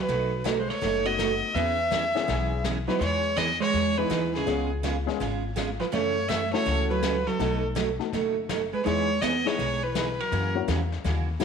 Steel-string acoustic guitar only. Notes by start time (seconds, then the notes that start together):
0.08 B2 F#3 A3 D#4 F#4
0.44 B2 F#3 A3 D#4 F#4
0.81 B2 F#3 A3 D#4 F#4
1.19 B2 F#3 A3 D#4 F#4
1.56 E3 B3 C#4 G#4
1.91 E3 B3 C#4 G#4
2.28 E3 B3 C#4 G#4
2.65 E3 B3 C#4 G#4
3.01 E3 B3 D#4 G#4
3.37 E3 B3 D#4 G#4
3.73 E3 B3 D#4 G#4
4.10 E3 B3 D#4 G#4
4.47 C#3 G#3 B3 F4 G#4
4.83 C#3 G#3 B3 F4 G#4
5.20 C#3 G#3 B3 F4 G#4
5.56 C#3 G#3 B3 F4 G#4
5.92 C#3 E3 A3 C#4 F#4
6.29 C#3 E3 A3 C#4 F#4
6.66 C#3 E3 A3 C#4 F#4
7.03 C#3 E3 A3 C#4 F#4
7.40 B2 F#3 A3 D#4 F#4
7.75 B2 F#3 A3 D#4 F#4
8.13 B2 F#3 A3 D#4 F#4
8.49 B2 F#3 A3 D#4 F#4
8.86 E3 B3 D#4 G#4
9.22 E3 B3 D#4 G#4
9.59 E3 B3 D#4 G#4
9.95 E3 B3 D#4 G#4
10.32 C#3 E3 A#3 C#4 F#4
10.68 C#3 E3 A#3 C#4 F#4
11.04 C#3 E3 A#3 C#4 F#4
11.40 C#3 E3 A#3 C#4 F#4